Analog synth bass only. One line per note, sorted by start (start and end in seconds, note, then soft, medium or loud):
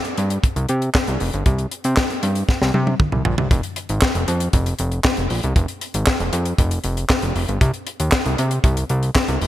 0.18 0.38 G2 medium
0.56 0.67 C2 medium
0.69 0.90 C3 loud
1.08 1.18 C2 medium
1.21 1.31 F1 medium
1.34 1.44 G1 medium
1.46 1.67 C2 loud
1.85 1.95 C3 loud
2.23 2.44 G2 medium
2.61 2.72 C2 loud
2.74 2.95 C3 loud
3.13 3.23 C2 medium
3.25 3.36 A#1 loud
3.38 3.49 C2 medium
3.51 3.61 F1 loud
3.90 4.00 G#1 loud
4.15 4.26 F1 medium
4.28 4.49 F2 loud
4.53 4.74 F1 loud
4.80 5.00 F1 loud
5.18 5.28 F1 medium
5.30 5.41 A#1 medium
5.44 5.54 C2 medium
5.56 5.66 F1 loud
5.94 6.05 G#1 medium
6.20 6.31 F1 medium
6.33 6.54 F2 loud
6.59 6.79 F1 loud
6.84 7.05 F1 medium
7.23 7.33 F1 medium
7.36 7.46 F1 medium
7.49 7.59 G1 medium
7.61 7.71 C2 loud
8.00 8.10 D#2 medium
8.26 8.36 C2 medium
8.39 8.59 C3 loud
8.64 8.85 C2 loud
8.90 9.10 C2 loud
9.28 9.39 C2 medium
9.41 9.47 F1 medium